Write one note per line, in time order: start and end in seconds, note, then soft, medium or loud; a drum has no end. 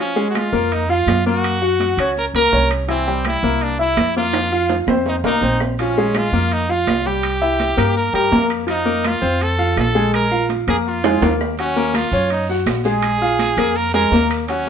0.00 0.13 F3 medium
0.00 0.27 C#4 medium
0.00 0.13 F4 medium
0.00 high timbale medium
0.16 0.46 G#3 medium
0.16 0.46 G#4 medium
0.16 high conga soft
0.16 maracas medium
0.30 0.39 F#4 medium
0.35 0.74 F4 medium
0.35 high conga medium
0.35 high timbale medium
0.35 low timbale medium
0.35 claves medium
0.35 maracas medium
0.53 1.03 F2 medium
0.53 0.83 A#3 medium
0.53 0.83 A#4 medium
0.53 high conga soft
0.53 maracas soft
0.71 0.91 D#4 medium
0.71 high conga soft
0.71 high timbale medium
0.71 maracas medium
0.89 1.19 F4 medium
0.89 1.26 F4 loud
0.89 1.19 F5 medium
0.89 high conga soft
1.07 1.92 F#2 medium
1.07 high conga medium
1.07 high timbale medium
1.07 low timbale medium
1.07 claves medium
1.07 maracas medium
1.26 1.56 A#3 medium
1.26 2.13 F#4 medium
1.26 1.56 A#4 medium
1.26 maracas soft
1.44 high conga soft
1.44 high timbale medium
1.44 claves medium
1.44 maracas medium
1.62 1.92 F#4 medium
1.62 1.92 F#5 medium
1.62 high conga soft
1.80 high conga medium
1.80 high timbale medium
1.80 low timbale medium
1.80 maracas medium
1.97 2.31 C#2 medium
1.97 2.28 C#4 medium
1.97 2.29 C#5 medium
1.97 high timbale medium
1.97 claves medium
1.97 maracas soft
2.16 2.26 A#4 medium
2.16 high conga soft
2.16 maracas medium
2.34 2.51 C#2 medium
2.34 2.50 A#3 medium
2.34 2.69 A#4 loud
2.34 2.50 A#4 medium
2.34 high conga soft
2.34 high timbale medium
2.52 3.37 C2 medium
2.52 2.82 C#4 medium
2.52 2.83 C#5 medium
2.52 high conga medium
2.52 low timbale medium
2.52 maracas medium
2.71 high conga soft
2.71 high timbale medium
2.71 claves medium
2.71 maracas soft
2.88 3.03 E3 medium
2.88 3.23 C4 medium
2.88 3.04 E4 medium
2.88 high conga soft
2.88 high timbale medium
2.88 maracas medium
3.07 3.37 G3 medium
3.07 3.37 G4 medium
3.07 high conga soft
3.25 3.64 E4 medium
3.25 high conga medium
3.25 high timbale medium
3.25 low timbale medium
3.25 claves medium
3.25 maracas medium
3.43 3.94 C2 medium
3.43 3.73 A#3 medium
3.43 3.73 A#4 medium
3.43 high conga soft
3.43 maracas soft
3.61 3.80 D4 medium
3.61 high conga soft
3.61 high timbale medium
3.61 maracas medium
3.79 4.09 E4 medium
3.79 4.14 E4 medium
3.79 4.09 E5 medium
3.79 high conga soft
3.97 4.82 F2 medium
3.97 high conga medium
3.97 high timbale medium
3.97 low timbale medium
3.97 claves medium
3.97 maracas medium
4.15 4.46 A#3 medium
4.15 4.76 F4 loud
4.15 4.46 A#4 medium
4.15 high conga soft
4.15 maracas soft
4.33 high conga soft
4.33 high timbale medium
4.33 claves medium
4.33 maracas medium
4.51 4.82 F4 medium
4.51 4.82 F5 medium
4.51 high conga soft
4.51 maracas soft
4.69 high conga medium
4.69 high timbale medium
4.69 maracas medium
4.87 5.21 F2 medium
4.87 5.18 C4 medium
4.87 5.18 C5 medium
4.87 low timbale medium
4.87 claves medium
4.87 maracas soft
5.06 5.16 D#4 medium
5.06 high conga soft
5.06 low timbale medium
5.06 maracas medium
5.24 5.41 C2 medium
5.24 5.39 A#3 medium
5.24 5.59 D#4 loud
5.24 5.40 A#4 medium
5.24 high conga soft
5.24 low timbale medium
5.24 maracas medium
5.41 6.27 A#1 medium
5.41 5.72 C4 medium
5.41 5.72 C5 medium
5.41 high conga medium
5.41 maracas medium
5.60 low timbale medium
5.60 claves medium
5.60 maracas soft
5.78 5.94 F3 medium
5.78 6.19 C#4 medium
5.78 5.94 F4 medium
5.78 high conga soft
5.78 high timbale medium
5.78 maracas medium
5.96 6.27 G#3 medium
5.96 6.27 G#4 medium
5.96 high conga soft
5.96 maracas medium
6.14 6.54 F4 loud
6.14 high conga medium
6.14 high timbale medium
6.14 low timbale medium
6.14 claves medium
6.14 maracas medium
6.32 6.83 F2 medium
6.32 6.63 A#3 medium
6.32 6.63 A#4 medium
6.32 high conga soft
6.32 maracas soft
6.51 6.72 D#4 medium
6.51 high conga soft
6.51 high timbale medium
6.51 maracas medium
6.69 6.99 F4 medium
6.69 7.08 F4 medium
6.69 6.99 F5 medium
6.69 high conga soft
6.87 7.72 C2 medium
6.87 high conga medium
6.87 high timbale medium
6.87 low timbale medium
6.87 claves medium
6.87 maracas medium
7.06 7.35 G3 medium
7.06 7.36 G4 medium
7.06 7.97 G4 loud
7.06 high conga soft
7.06 maracas soft
7.23 high conga soft
7.23 high timbale loud
7.23 claves medium
7.23 maracas medium
7.41 7.71 E4 medium
7.41 7.71 E5 medium
7.41 high conga soft
7.60 high conga medium
7.60 high timbale medium
7.60 low timbale medium
7.60 maracas medium
7.77 8.11 G2 medium
7.77 8.07 A#3 medium
7.77 8.07 A#4 medium
7.77 high timbale medium
7.77 claves medium
7.77 maracas soft
7.96 8.13 A#4 medium
7.96 high conga soft
7.96 maracas medium
8.13 8.31 G2 medium
8.13 8.29 G3 medium
8.13 8.29 G4 medium
8.13 8.48 A#4 loud
8.13 high conga soft
8.13 high timbale medium
8.13 maracas soft
8.31 9.17 F2 medium
8.31 8.62 A#3 medium
8.31 8.62 A#4 medium
8.31 high conga medium
8.31 low timbale medium
8.31 maracas medium
8.50 high conga soft
8.50 high timbale medium
8.50 claves medium
8.50 maracas soft
8.67 8.82 F3 medium
8.67 9.08 D#4 medium
8.67 8.83 F4 medium
8.67 high conga soft
8.67 high timbale medium
8.67 maracas medium
8.85 9.16 A#3 medium
8.85 9.16 A#4 medium
8.85 high conga soft
8.85 maracas medium
9.04 9.44 F4 loud
9.04 high conga medium
9.04 high timbale medium
9.04 low timbale medium
9.04 claves medium
9.04 maracas medium
9.22 9.73 F2 medium
9.22 9.52 C4 medium
9.22 9.52 C5 medium
9.22 high conga soft
9.22 maracas soft
9.41 9.78 A4 loud
9.41 high conga soft
9.41 high timbale medium
9.41 maracas medium
9.58 9.88 F4 medium
9.58 9.89 F5 medium
9.58 high conga soft
9.58 maracas medium
9.77 10.62 A#1 medium
9.77 10.12 A4 medium
9.77 high conga medium
9.77 high timbale medium
9.77 low timbale medium
9.77 claves medium
9.77 maracas medium
9.95 10.25 G#3 medium
9.95 10.25 G#4 medium
9.95 high conga soft
9.95 maracas soft
10.13 10.48 A#4 medium
10.13 high conga soft
10.13 high timbale medium
10.13 claves soft
10.13 maracas medium
10.31 10.61 F4 medium
10.31 10.61 F5 medium
10.31 high conga soft
10.49 high conga medium
10.49 high timbale medium
10.49 low timbale medium
10.49 maracas medium
10.67 11.18 F2 medium
10.67 10.97 A#3 medium
10.67 10.77 G#4 loud
10.67 10.98 A#4 medium
10.67 high conga soft
10.67 high timbale medium
10.67 claves medium
10.67 maracas soft
10.86 11.37 F4 medium
10.86 high conga soft
10.86 maracas medium
11.04 11.19 G#3 medium
11.04 11.19 G#4 medium
11.04 high conga soft
11.04 high timbale loud
11.22 12.07 D#2 medium
11.22 11.52 A#3 medium
11.22 11.52 A#4 medium
11.22 high conga medium
11.22 high timbale loud
11.22 maracas medium
11.40 high conga soft
11.40 low timbale medium
11.40 claves medium
11.40 maracas soft
11.57 11.74 F#3 medium
11.57 11.97 C#4 medium
11.57 11.74 F#4 medium
11.57 high conga soft
11.57 high timbale medium
11.57 long guiro medium
11.57 maracas medium
11.76 12.06 A#3 medium
11.76 12.06 A#4 medium
11.76 high conga soft
11.94 12.31 F4 medium
11.94 high conga medium
11.94 high timbale medium
11.94 low timbale medium
11.94 short guiro medium
11.94 claves medium
11.94 maracas medium
12.12 12.63 F#2 medium
12.12 12.42 C#4 medium
12.12 12.43 C#5 medium
12.12 high conga soft
12.12 short guiro medium
12.12 maracas soft
12.30 12.48 D#4 medium
12.30 high conga soft
12.30 high timbale medium
12.30 long guiro medium
12.30 maracas medium
12.49 12.79 F#4 medium
12.49 12.79 F#5 medium
12.49 high conga soft
12.49 maracas medium
12.66 13.51 A#1 medium
12.66 high conga medium
12.66 high timbale medium
12.66 low timbale medium
12.66 short guiro medium
12.66 claves medium
12.66 maracas medium
12.84 13.15 G#3 medium
12.84 13.78 G#4 loud
12.84 13.15 G#4 medium
12.84 high conga soft
12.84 short guiro medium
12.84 maracas soft
13.02 high conga soft
13.02 high timbale loud
13.02 long guiro medium
13.02 claves medium
13.02 maracas medium
13.21 13.51 F4 medium
13.21 13.51 F5 medium
13.21 high conga soft
13.21 maracas medium
13.39 high conga medium
13.39 high timbale medium
13.39 low timbale medium
13.39 short guiro medium
13.39 maracas medium
13.57 14.08 F2 medium
13.57 13.88 A#3 medium
13.57 13.88 A#4 medium
13.57 high timbale medium
13.57 short guiro medium
13.57 claves medium
13.57 maracas soft
13.75 13.94 A#4 medium
13.75 high conga soft
13.75 long guiro medium
13.75 maracas medium
13.94 14.09 G#3 medium
13.94 14.09 G#4 medium
13.94 14.28 A#4 loud
13.94 high conga soft
13.94 high timbale medium
13.94 maracas medium
14.11 14.69 D#2 medium
14.11 14.42 A#3 medium
14.11 14.42 A#4 medium
14.11 high conga medium
14.11 low timbale medium
14.11 short guiro medium
14.11 maracas medium
14.30 high conga soft
14.30 high timbale medium
14.30 short guiro medium
14.30 claves medium
14.30 maracas soft
14.48 14.64 F#3 medium
14.48 14.69 C#4 medium
14.48 14.64 F#4 medium
14.48 high conga soft
14.48 high timbale medium
14.48 long guiro medium
14.48 maracas medium